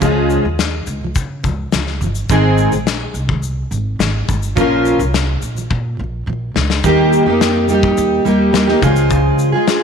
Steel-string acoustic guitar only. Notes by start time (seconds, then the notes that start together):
0.00 C#3 F3 G#3 F4 G#4
0.44 C#3 F3
1.01 C#3 F3
1.43 C#3 F3
1.73 C#3 F3
2.01 C#3 F3
2.29 G#2 D#3 G#3 C4 D#4 G#4
2.72 G#2 D#3 G#3
3.29 G#2 D#3 G#3
3.71 G#2 D#3 G#3
4.00 G#2 D#3 G#3
4.27 G#2 D#3 G#3
4.56 A#2 F3 C#4 F4 A#4
4.98 A#2 F3
5.54 A#2 F3
5.97 A#2 F3
6.26 A#2 F3
6.54 A#2 F3
6.84 D#3 G3 A#3 D#4 G4
7.26 A#3 D#4 G4
7.68 G3 A#3 D#4 G4
8.25 G3 A#3 D#4 G4
8.53 G3 A#3 D#4 G4
8.68 A#3 D#4 G4
8.81 C#3 F3 G#3 F4 G#4
9.52 G#3 F4 G#4